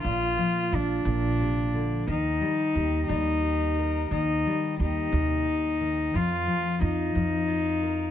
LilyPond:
<<
  \new Staff \with { instrumentName = "Cello" } { \time 6/8 \key ees \lydian \tempo 4. = 59 f'4 d'2 | ees'4. ees'4. | ees'4 ees'2 | f'4 ees'2 | }
  \new Staff \with { instrumentName = "Steel-string acoustic guitar" } { \clef bass \time 6/8 \key ees \lydian << { r4 f'2 | r4 g'4 g'8 bes'8 | r4 g'2 | r4 f'4 f'8 bes'8 | } \\ { <bes, f>8 f4 bes,8 c8 d8 | ees8 g4 g4. | ees8 g4 c8 r8 ees8 | f,8 f4 f4. | } >> }
  \new Staff \with { instrumentName = "Upright bass" } { \clef bass \time 6/8 \key ees \lydian bes,,8 r8 bes,,8 bes,,4. | ees,8 r8 ees,8 ees,4. | ees,8 r8 ees,8 ees,4. | f,8 r8 f,8 f,4. | }
>>